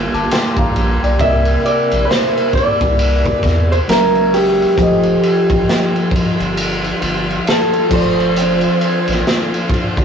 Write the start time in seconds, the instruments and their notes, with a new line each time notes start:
Already playing: string section D3 G3 A#3 F4, tine electric piano G3 D4 A#4 A5
0.14 analog synth bass G1, tine electric piano A5 D6, ride
0.31 tine electric piano G5 C6, snare, ride
0.57 analog synth bass A1, tine electric piano F5 A#5, kick, ride
0.76 analog synth bass A#1, ride
1.03 analog synth bass B1, tine electric piano D5 G5, ride
1.17 analog synth bass C2, tine electric piano C3 C4 A#4, string section C3 E4, clean electric guitar E5, kick, ride
1.23 tine electric piano D5 D#5
1.31 tine electric piano E5
1.45 ride
1.66 clean electric guitar D5, ride
1.92 analog synth bass A#1, ride
2.05 clean electric guitar B4
2.11 clean electric guitar C5, snare, ride
2.38 ride
2.53 analog synth bass C2, clean electric guitar D5, kick
2.57 ride
2.81 analog synth bass C2, kick, ride
2.99 ride
3.25 kick, ride
3.43 analog synth bass E2, kick, snare, ride
3.72 clean electric guitar C5, ride
3.88 analog synth bass F#1, string section E3 F#3 G#3, tine electric piano F#3 G#3 C#4 A4 E5, clean electric guitar A#4, snare, ride
3.97 tine electric piano A#4
4.15 ride
4.34 clean electric guitar G4, open hi-hat, ride
4.62 ride
4.76 analog synth bass F1, string section D#3 F3 G3 F4, tine electric piano F3 F4 G4, kick, hi-hat pedal, ride
4.81 tine electric piano A4 D#5
5.03 ride
5.23 ride
5.50 analog synth bass A1, kick, ride
5.69 snare, ride
5.96 ride
6.11 analog synth bass G1, kick
6.16 ride
6.40 analog synth bass G1, ride
6.57 ride
6.84 ride
7.02 analog synth bass G1, ride
7.31 ride
7.47 clean electric guitar A4, snare, ride
7.73 ride
7.89 analog synth bass F1, string section D3 C4, tine electric piano F3 F4 A4, kick, crash
7.93 clean electric guitar C5, tine electric piano C5 D5
8.20 ride
8.36 hi-hat pedal, ride
8.61 ride
8.81 ride
9.08 analog synth bass A1, snare, ride
9.27 snare, ride
9.54 ride
9.70 analog synth bass G1, string section D4, kick
9.74 ride
9.97 analog synth bass G1, kick, ride